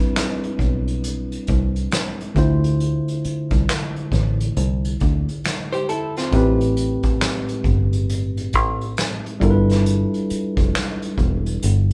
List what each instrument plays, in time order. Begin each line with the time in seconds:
Already playing: tine electric piano G3 C4 D4 E4 B4
0.16 finger snap, snare, closed hi-hat
0.43 closed hi-hat
0.59 fingered electric bass B1, kick, closed hi-hat
0.88 closed hi-hat
1.04 closed hi-hat
1.32 closed hi-hat
1.47 fingered electric bass C2, kick, closed hi-hat
1.76 closed hi-hat
1.91 finger snap, snare, closed hi-hat
2.21 closed hi-hat
2.35 fingered electric bass D2, tine electric piano D3 A3 E4 F4 C5, kick, closed hi-hat
2.64 closed hi-hat
2.80 closed hi-hat
3.08 closed hi-hat
3.24 muted fingered electric bass stroke, closed hi-hat
3.51 fingered electric bass C2, kick, closed hi-hat
3.69 finger snap, snare, closed hi-hat
3.96 closed hi-hat
4.12 fingered electric bass A1, kick, snare, closed hi-hat
4.40 closed hi-hat
4.57 fingered electric bass C2, closed hi-hat
4.85 closed hi-hat
5.00 fingered electric bass D2, kick, closed hi-hat
5.29 closed hi-hat
5.44 finger snap, snare, closed hi-hat
5.73 hollow-body jazz guitar G4 C5, closed hi-hat
5.89 hollow-body jazz guitar E4 A4, closed hi-hat
6.16 hollow-body jazz guitar C4 F4, snare, closed hi-hat
6.31 fingered electric bass A1, tine electric piano A2 A3 C4 G4 B4, kick, closed hi-hat
6.61 closed hi-hat
6.77 closed hi-hat
7.03 kick, closed hi-hat
7.21 finger snap, snare, closed hi-hat
7.49 closed hi-hat
7.64 fingered electric bass G1, kick, closed hi-hat
7.93 closed hi-hat
8.09 closed hi-hat
8.37 closed hi-hat
8.53 fingered electric bass A1, kick, closed hi-hat
8.81 closed hi-hat
8.97 finger snap, snare, closed hi-hat
9.26 closed hi-hat
9.40 fingered electric bass G1, tine electric piano G3 D4 E4 F4 A4 A#4, kick, closed hi-hat
9.50 tine electric piano B4
9.69 snare, closed hi-hat
9.86 closed hi-hat
10.14 closed hi-hat
10.30 muted fingered electric bass stroke, closed hi-hat
10.57 fingered electric bass F1, kick, closed hi-hat
10.75 finger snap, snare, closed hi-hat
11.02 closed hi-hat
11.18 fingered electric bass E1, kick, closed hi-hat
11.46 closed hi-hat
11.63 fingered electric bass G1, closed hi-hat